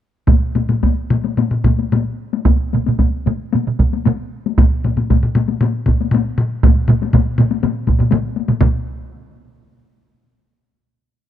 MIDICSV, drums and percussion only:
0, 0, Header, 1, 2, 480
1, 0, Start_track
1, 0, Tempo, 540054
1, 257, Time_signature, 4, 2, 24, 8
1, 3134, Tempo, 519931
1, 5534, Tempo, 495050
1, 7934, Tempo, 464396
1, 10714, End_track
2, 0, Start_track
2, 0, Title_t, "Taiko and cinematic ensemble drums"
2, 242, Note_on_c, 9, 45, 79
2, 245, Note_on_c, 9, 41, 73
2, 255, Note_on_c, 9, 48, 54
2, 330, Note_off_c, 9, 45, 0
2, 334, Note_off_c, 9, 41, 0
2, 344, Note_off_c, 9, 48, 0
2, 490, Note_on_c, 9, 45, 60
2, 496, Note_on_c, 9, 48, 49
2, 579, Note_off_c, 9, 45, 0
2, 585, Note_off_c, 9, 48, 0
2, 612, Note_on_c, 9, 45, 62
2, 615, Note_on_c, 9, 48, 45
2, 701, Note_off_c, 9, 45, 0
2, 703, Note_off_c, 9, 48, 0
2, 737, Note_on_c, 9, 48, 58
2, 738, Note_on_c, 9, 41, 52
2, 826, Note_off_c, 9, 41, 0
2, 826, Note_off_c, 9, 48, 0
2, 981, Note_on_c, 9, 45, 82
2, 984, Note_on_c, 9, 48, 43
2, 1070, Note_off_c, 9, 45, 0
2, 1073, Note_off_c, 9, 48, 0
2, 1106, Note_on_c, 9, 48, 49
2, 1195, Note_off_c, 9, 48, 0
2, 1220, Note_on_c, 9, 45, 62
2, 1229, Note_on_c, 9, 48, 59
2, 1309, Note_off_c, 9, 45, 0
2, 1318, Note_off_c, 9, 48, 0
2, 1342, Note_on_c, 9, 45, 61
2, 1431, Note_off_c, 9, 45, 0
2, 1459, Note_on_c, 9, 41, 54
2, 1461, Note_on_c, 9, 45, 86
2, 1473, Note_on_c, 9, 48, 43
2, 1547, Note_off_c, 9, 41, 0
2, 1550, Note_off_c, 9, 45, 0
2, 1562, Note_off_c, 9, 48, 0
2, 1587, Note_on_c, 9, 48, 44
2, 1676, Note_off_c, 9, 48, 0
2, 1708, Note_on_c, 9, 45, 77
2, 1714, Note_on_c, 9, 48, 54
2, 1797, Note_off_c, 9, 45, 0
2, 1802, Note_off_c, 9, 48, 0
2, 2071, Note_on_c, 9, 48, 45
2, 2159, Note_off_c, 9, 48, 0
2, 2179, Note_on_c, 9, 41, 77
2, 2185, Note_on_c, 9, 48, 54
2, 2188, Note_on_c, 9, 47, 82
2, 2268, Note_off_c, 9, 41, 0
2, 2274, Note_off_c, 9, 48, 0
2, 2277, Note_off_c, 9, 47, 0
2, 2426, Note_on_c, 9, 48, 45
2, 2434, Note_on_c, 9, 47, 63
2, 2515, Note_off_c, 9, 48, 0
2, 2523, Note_off_c, 9, 47, 0
2, 2545, Note_on_c, 9, 48, 48
2, 2559, Note_on_c, 9, 47, 63
2, 2634, Note_off_c, 9, 48, 0
2, 2647, Note_off_c, 9, 47, 0
2, 2656, Note_on_c, 9, 41, 56
2, 2658, Note_on_c, 9, 48, 51
2, 2744, Note_off_c, 9, 41, 0
2, 2747, Note_off_c, 9, 48, 0
2, 2897, Note_on_c, 9, 48, 45
2, 2905, Note_on_c, 9, 47, 80
2, 2986, Note_off_c, 9, 48, 0
2, 2994, Note_off_c, 9, 47, 0
2, 3137, Note_on_c, 9, 48, 56
2, 3150, Note_on_c, 9, 47, 60
2, 3229, Note_off_c, 9, 48, 0
2, 3242, Note_off_c, 9, 47, 0
2, 3266, Note_on_c, 9, 47, 61
2, 3359, Note_off_c, 9, 47, 0
2, 3379, Note_on_c, 9, 41, 53
2, 3381, Note_on_c, 9, 48, 45
2, 3384, Note_on_c, 9, 47, 73
2, 3471, Note_off_c, 9, 41, 0
2, 3474, Note_off_c, 9, 48, 0
2, 3477, Note_off_c, 9, 47, 0
2, 3507, Note_on_c, 9, 48, 46
2, 3600, Note_off_c, 9, 48, 0
2, 3622, Note_on_c, 9, 48, 51
2, 3629, Note_on_c, 9, 47, 89
2, 3715, Note_off_c, 9, 48, 0
2, 3721, Note_off_c, 9, 47, 0
2, 3996, Note_on_c, 9, 48, 42
2, 4088, Note_off_c, 9, 48, 0
2, 4105, Note_on_c, 9, 41, 77
2, 4111, Note_on_c, 9, 45, 81
2, 4111, Note_on_c, 9, 48, 56
2, 4198, Note_off_c, 9, 41, 0
2, 4203, Note_off_c, 9, 45, 0
2, 4203, Note_off_c, 9, 48, 0
2, 4351, Note_on_c, 9, 45, 61
2, 4354, Note_on_c, 9, 48, 45
2, 4443, Note_off_c, 9, 45, 0
2, 4447, Note_off_c, 9, 48, 0
2, 4466, Note_on_c, 9, 45, 59
2, 4471, Note_on_c, 9, 48, 44
2, 4558, Note_off_c, 9, 45, 0
2, 4563, Note_off_c, 9, 48, 0
2, 4589, Note_on_c, 9, 41, 54
2, 4590, Note_on_c, 9, 48, 53
2, 4591, Note_on_c, 9, 45, 60
2, 4681, Note_off_c, 9, 41, 0
2, 4682, Note_off_c, 9, 48, 0
2, 4684, Note_off_c, 9, 45, 0
2, 4706, Note_on_c, 9, 45, 61
2, 4798, Note_off_c, 9, 45, 0
2, 4818, Note_on_c, 9, 45, 86
2, 4830, Note_on_c, 9, 48, 46
2, 4911, Note_off_c, 9, 45, 0
2, 4922, Note_off_c, 9, 48, 0
2, 4941, Note_on_c, 9, 48, 50
2, 5034, Note_off_c, 9, 48, 0
2, 5055, Note_on_c, 9, 45, 86
2, 5071, Note_on_c, 9, 48, 57
2, 5147, Note_off_c, 9, 45, 0
2, 5163, Note_off_c, 9, 48, 0
2, 5288, Note_on_c, 9, 45, 84
2, 5304, Note_on_c, 9, 48, 46
2, 5306, Note_on_c, 9, 41, 51
2, 5381, Note_off_c, 9, 45, 0
2, 5397, Note_off_c, 9, 48, 0
2, 5398, Note_off_c, 9, 41, 0
2, 5423, Note_on_c, 9, 48, 44
2, 5515, Note_off_c, 9, 48, 0
2, 5522, Note_on_c, 9, 45, 88
2, 5551, Note_on_c, 9, 48, 62
2, 5618, Note_off_c, 9, 45, 0
2, 5648, Note_off_c, 9, 48, 0
2, 5778, Note_on_c, 9, 45, 81
2, 5875, Note_off_c, 9, 45, 0
2, 6026, Note_on_c, 9, 41, 79
2, 6026, Note_on_c, 9, 47, 86
2, 6030, Note_on_c, 9, 45, 84
2, 6036, Note_on_c, 9, 48, 62
2, 6123, Note_off_c, 9, 41, 0
2, 6123, Note_off_c, 9, 47, 0
2, 6127, Note_off_c, 9, 45, 0
2, 6133, Note_off_c, 9, 48, 0
2, 6264, Note_on_c, 9, 45, 84
2, 6273, Note_on_c, 9, 47, 83
2, 6280, Note_on_c, 9, 48, 48
2, 6361, Note_off_c, 9, 45, 0
2, 6370, Note_off_c, 9, 47, 0
2, 6377, Note_off_c, 9, 48, 0
2, 6400, Note_on_c, 9, 48, 48
2, 6497, Note_off_c, 9, 48, 0
2, 6509, Note_on_c, 9, 45, 84
2, 6515, Note_on_c, 9, 41, 56
2, 6517, Note_on_c, 9, 47, 86
2, 6520, Note_on_c, 9, 48, 59
2, 6606, Note_off_c, 9, 45, 0
2, 6612, Note_off_c, 9, 41, 0
2, 6614, Note_off_c, 9, 47, 0
2, 6617, Note_off_c, 9, 48, 0
2, 6750, Note_on_c, 9, 45, 88
2, 6758, Note_on_c, 9, 48, 50
2, 6765, Note_on_c, 9, 47, 81
2, 6847, Note_off_c, 9, 45, 0
2, 6855, Note_off_c, 9, 48, 0
2, 6862, Note_off_c, 9, 47, 0
2, 6873, Note_on_c, 9, 48, 50
2, 6970, Note_off_c, 9, 48, 0
2, 6992, Note_on_c, 9, 48, 57
2, 6993, Note_on_c, 9, 45, 58
2, 7007, Note_on_c, 9, 47, 64
2, 7089, Note_off_c, 9, 48, 0
2, 7090, Note_off_c, 9, 45, 0
2, 7104, Note_off_c, 9, 47, 0
2, 7226, Note_on_c, 9, 45, 60
2, 7229, Note_on_c, 9, 48, 45
2, 7240, Note_on_c, 9, 41, 52
2, 7240, Note_on_c, 9, 47, 57
2, 7323, Note_off_c, 9, 45, 0
2, 7326, Note_off_c, 9, 48, 0
2, 7337, Note_off_c, 9, 41, 0
2, 7337, Note_off_c, 9, 47, 0
2, 7342, Note_on_c, 9, 48, 44
2, 7351, Note_on_c, 9, 45, 62
2, 7354, Note_on_c, 9, 47, 57
2, 7439, Note_off_c, 9, 48, 0
2, 7448, Note_off_c, 9, 45, 0
2, 7451, Note_off_c, 9, 47, 0
2, 7456, Note_on_c, 9, 48, 55
2, 7468, Note_on_c, 9, 45, 80
2, 7473, Note_on_c, 9, 47, 91
2, 7553, Note_off_c, 9, 48, 0
2, 7565, Note_off_c, 9, 45, 0
2, 7570, Note_off_c, 9, 47, 0
2, 7701, Note_on_c, 9, 48, 43
2, 7798, Note_off_c, 9, 48, 0
2, 7818, Note_on_c, 9, 48, 48
2, 7820, Note_on_c, 9, 45, 59
2, 7827, Note_on_c, 9, 47, 56
2, 7915, Note_off_c, 9, 48, 0
2, 7917, Note_off_c, 9, 45, 0
2, 7924, Note_off_c, 9, 47, 0
2, 7939, Note_on_c, 9, 45, 88
2, 7939, Note_on_c, 9, 48, 59
2, 7942, Note_on_c, 9, 47, 85
2, 7945, Note_on_c, 9, 41, 57
2, 8042, Note_off_c, 9, 48, 0
2, 8043, Note_off_c, 9, 45, 0
2, 8045, Note_off_c, 9, 47, 0
2, 8048, Note_off_c, 9, 41, 0
2, 10714, End_track
0, 0, End_of_file